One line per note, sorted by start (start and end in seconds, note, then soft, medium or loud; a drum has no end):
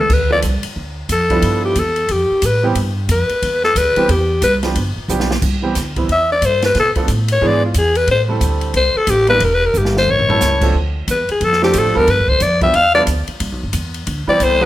0.00 0.15 A4 medium
0.10 0.42 D2 medium
0.10 0.32 B4 medium
0.10 kick medium
0.10 crash medium
0.30 0.42 F3 medium
0.30 0.42 A3 medium
0.30 0.42 C4 medium
0.30 0.42 D4 medium
0.30 0.42 A4 medium
0.30 0.39 D5 loud
0.42 0.63 C2 loud
0.42 kick soft
0.42 hi-hat pedal soft
0.42 ride medium
0.63 muted upright bass stroke soft
0.63 ride medium
0.76 1.08 D2 medium
0.76 kick soft
1.09 1.42 F2 medium
1.09 1.61 A4 medium
1.09 kick soft
1.09 hi-hat pedal medium
1.09 ride medium
1.30 1.74 F3 medium
1.30 1.74 G3 medium
1.30 1.74 B3 medium
1.30 1.74 D4 medium
1.30 1.74 E4 medium
1.30 kick soft
1.30 ride soft
1.42 1.75 G2 medium
1.42 kick soft
1.42 ride medium
1.65 1.80 G4 medium
1.75 2.08 E2 medium
1.75 2.13 A4 medium
1.75 kick soft
1.75 hi-hat pedal soft
1.75 ride medium
1.96 ride soft
2.09 2.29 F2 medium
2.09 2.47 G4 medium
2.09 kick soft
2.09 ride medium
2.30 muted upright bass stroke soft
2.42 2.75 A2 medium
2.42 2.65 B4 medium
2.42 kick soft
2.42 hi-hat pedal medium
2.42 ride medium
2.63 2.75 E3 medium
2.63 2.75 G3 medium
2.63 2.75 B3 medium
2.63 2.75 C4 medium
2.63 2.75 G4 medium
2.75 3.08 G2 medium
2.75 kick soft
2.75 ride medium
3.09 3.28 F2 loud
3.09 3.61 B4 medium
3.09 kick soft
3.09 hi-hat pedal medium
3.09 ride medium
3.29 muted upright bass stroke soft
3.29 ride soft
3.42 3.75 E2 medium
3.42 kick soft
3.42 ride medium
3.64 3.79 A4 loud
3.64 snare soft
3.75 3.95 D2 medium
3.75 4.12 B4 loud
3.75 kick soft
3.75 hi-hat pedal medium
3.75 ride medium
3.96 4.08 E3 medium
3.96 4.08 G3 medium
3.96 4.08 B3 medium
3.96 4.08 C4 medium
3.96 4.08 G4 medium
3.96 muted upright bass stroke soft
3.96 ride soft
4.09 4.41 E2 loud
4.09 4.43 G4 medium
4.09 kick soft
4.09 ride medium
4.42 4.74 C2 loud
4.42 4.56 B4 medium
4.42 kick soft
4.42 hi-hat pedal medium
4.42 ride medium
4.63 4.74 F3 medium
4.63 4.74 G3 medium
4.63 4.74 B3 medium
4.63 4.74 D4 medium
4.63 4.75 G4 medium
4.63 snare soft
4.63 ride soft
4.76 4.95 G1 medium
4.76 kick soft
4.76 ride medium
4.96 muted upright bass stroke soft
5.08 5.41 B1 medium
5.08 5.28 F3 medium
5.08 5.28 G3 medium
5.08 5.28 B3 medium
5.08 5.28 D4 medium
5.08 5.28 G4 medium
5.08 hi-hat pedal soft
5.20 snare medium
5.31 snare medium
5.42 5.74 C2 medium
5.42 kick medium
5.42 crash medium
5.62 5.74 E3 medium
5.62 5.74 G3 medium
5.62 5.74 B3 medium
5.62 5.74 C4 medium
5.62 5.74 G4 medium
5.75 6.08 D2 medium
5.75 kick soft
5.75 snare soft
5.75 hi-hat pedal medium
5.75 ride medium
5.96 6.08 E3 medium
5.96 6.08 G3 medium
5.96 6.08 B3 medium
5.96 6.08 C4 medium
5.96 6.08 E4 medium
5.96 kick soft
5.96 ride soft
6.09 6.41 E2 medium
6.09 6.30 E5 medium
6.09 kick soft
6.09 ride medium
6.32 6.47 D5 loud
6.42 6.74 G2 medium
6.42 6.64 C5 medium
6.42 kick soft
6.42 hi-hat pedal soft
6.42 ride medium
6.62 6.76 B4 loud
6.62 snare medium
6.62 ride soft
6.75 6.94 B2 medium
6.75 kick soft
6.75 snare soft
6.75 ride medium
6.80 6.91 A4 medium
6.95 7.07 F3 medium
6.95 7.07 A3 medium
6.95 7.07 B3 medium
6.95 7.08 D4 medium
6.95 7.08 A4 medium
6.95 muted upright bass stroke soft
6.95 kick medium
6.95 ride soft
7.08 7.41 A2 loud
7.08 kick soft
7.08 hi-hat pedal soft
7.08 ride medium
7.28 ride medium
7.32 7.48 C#5 medium
7.41 7.74 G#2 medium
7.41 7.60 E3 medium
7.41 7.60 G#3 medium
7.41 7.60 B3 medium
7.41 7.61 D4 medium
7.41 7.61 G#4 medium
7.41 kick soft
7.47 7.65 D5 loud
7.66 7.79 F4 medium
7.74 8.07 E2 medium
7.74 7.98 G#4 medium
7.74 kick soft
7.74 hi-hat pedal medium
7.74 ride medium
7.95 8.09 B4 medium
7.95 ride soft
8.07 8.40 A2 medium
8.07 8.23 C5 medium
8.07 kick soft
8.07 ride medium
8.28 8.72 G3 medium
8.28 8.72 A3 medium
8.28 8.72 C4 medium
8.28 8.73 E4 medium
8.28 8.73 A4 medium
8.41 8.73 D2 loud
8.41 kick soft
8.41 hi-hat pedal medium
8.41 ride medium
8.61 ride soft
8.74 8.94 C2 medium
8.74 8.99 C5 medium
8.74 kick soft
8.74 ride medium
8.95 9.11 A4 medium
8.95 muted upright bass stroke soft
9.07 9.40 A1 medium
9.07 9.29 G4 loud
9.07 kick soft
9.07 hi-hat pedal medium
9.07 ride medium
9.27 9.40 G3 medium
9.27 9.40 A#3 medium
9.27 9.40 D4 medium
9.27 9.40 E4 medium
9.27 9.40 A#4 medium
9.27 9.45 B4 loud
9.27 ride soft
9.40 9.73 E1 medium
9.40 9.56 A#4 medium
9.40 kick soft
9.40 ride medium
9.54 9.67 B4 loud
9.65 9.79 A#4 medium
9.74 10.06 G1 loud
9.74 hi-hat pedal medium
9.78 9.97 G4 medium
9.85 snare medium
9.97 10.12 C5 medium
9.97 snare medium
10.08 10.40 A1 medium
10.08 10.76 C#5 loud
10.08 floor tom medium
10.19 floor tom medium
10.28 10.60 G3 medium
10.28 10.60 A3 medium
10.28 10.60 C#4 medium
10.28 10.60 E4 medium
10.28 10.60 A4 medium
10.28 floor tom medium
10.40 10.73 C#2 medium
10.40 snare medium
10.40 hi-hat pedal medium
10.61 10.73 F3 medium
10.61 10.73 A3 medium
10.61 10.73 C4 medium
10.61 10.74 D4 medium
10.61 10.74 A4 medium
10.61 kick medium
10.61 crash medium
10.74 11.07 D2 medium
11.08 11.27 E2 medium
11.08 11.29 B4 medium
11.08 kick soft
11.08 hi-hat pedal medium
11.08 ride medium
11.28 11.46 G#4 medium
11.28 muted upright bass stroke soft
11.28 ride soft
11.41 11.73 F2 medium
11.41 11.63 A4 loud
11.41 kick soft
11.41 ride medium
11.52 snare soft
11.62 11.93 F3 medium
11.62 11.93 A3 medium
11.62 11.93 C4 medium
11.62 11.93 D4 medium
11.62 11.80 G4 medium
11.62 11.93 A4 medium
11.62 snare soft
11.74 11.87 A2 medium
11.74 kick soft
11.74 hi-hat pedal medium
11.74 ride medium
11.78 11.99 A4 medium
11.85 11.96 F2 medium
11.95 12.07 D2 medium
11.95 12.06 F3 medium
11.95 12.06 G3 medium
11.95 12.06 B3 medium
11.95 12.07 D4 medium
11.95 12.07 A4 loud
11.95 12.11 A#4 loud
12.07 12.21 G2 medium
12.07 12.31 B4 medium
12.07 kick soft
12.07 ride medium
12.20 12.30 F2 medium
12.28 12.40 D2 medium
12.28 12.44 C5 loud
12.28 kick medium
12.40 12.72 F2 loud
12.40 12.62 D5 medium
12.40 hi-hat pedal medium
12.40 ride medium
12.61 12.73 F3 medium
12.61 12.73 G3 medium
12.61 12.73 B3 medium
12.61 12.73 D4 medium
12.61 12.73 G4 medium
12.61 12.77 E5 loud
12.61 kick medium
12.61 ride soft
12.73 13.06 E2 medium
12.73 12.94 F5 loud
12.73 ride medium
12.94 13.06 F3 medium
12.94 13.06 G3 medium
12.94 13.06 B3 medium
12.94 13.06 D4 medium
12.94 13.06 A4 medium
12.94 13.02 D5 loud
13.07 13.26 D2 medium
13.07 kick soft
13.07 hi-hat pedal soft
13.07 ride medium
13.28 muted upright bass stroke soft
13.28 ride soft
13.40 13.52 C2 medium
13.40 kick soft
13.40 ride medium
13.52 13.63 B1 medium
13.63 13.72 G1 medium
13.73 14.06 E2 medium
13.73 kick soft
13.73 hi-hat pedal medium
13.73 ride medium
13.94 ride soft
14.07 14.26 D2 medium
14.07 kick soft
14.07 ride medium
14.27 14.59 E3 medium
14.27 14.59 G3 medium
14.27 14.59 B3 medium
14.27 14.59 C4 medium
14.27 14.59 G4 medium
14.27 14.45 D5 loud
14.27 muted upright bass stroke soft
14.40 14.65 C2 medium
14.40 14.65 C5 loud
14.40 kick soft
14.40 hi-hat pedal medium
14.40 ride medium
14.60 14.65 F#3 medium
14.60 14.65 A3 medium
14.60 14.65 B3 medium
14.60 14.65 D#4 medium
14.60 14.65 F#4 loud